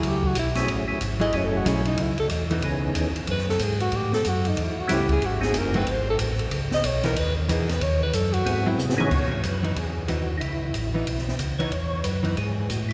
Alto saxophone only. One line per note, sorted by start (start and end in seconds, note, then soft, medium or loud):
0.08 0.28 G4 medium
0.27 0.37 F#4 medium
0.39 0.50 E4 medium
1.21 1.38 D#5 loud
1.36 1.46 C#5 medium
1.45 1.58 A4 medium
1.57 1.69 F#4 medium
1.67 1.86 C#4 medium
1.88 2.04 D#4 medium
2.02 2.19 E4 medium
2.20 2.27 A4 loud
3.31 3.48 B4 medium
3.50 3.65 A4 medium
3.63 3.81 G#4 medium
3.81 3.98 F#4 medium
3.96 4.14 G4 medium
4.14 4.30 A4 loud
4.28 4.50 F#4 medium
4.48 4.64 D#4 medium
4.63 4.81 E4 medium
4.80 4.95 F#4 medium
4.94 5.12 G4 medium
5.12 5.27 G#4 loud
5.25 5.44 F#4 medium
5.44 5.60 G#4 medium
5.58 5.78 A#4 medium
5.77 5.93 B4 medium
5.91 6.09 C5 loud
6.10 6.16 A4 loud
6.74 6.88 D#5 loud
6.86 7.05 C#5 medium
7.05 7.20 A#4 loud
7.19 7.36 B4 loud
7.37 7.52 D#4 medium
7.51 7.72 G#4 medium
7.70 7.84 B4 loud
7.82 8.02 C#5 loud
8.03 8.16 B4 medium
8.15 8.35 A4 medium
8.33 8.78 F#4 loud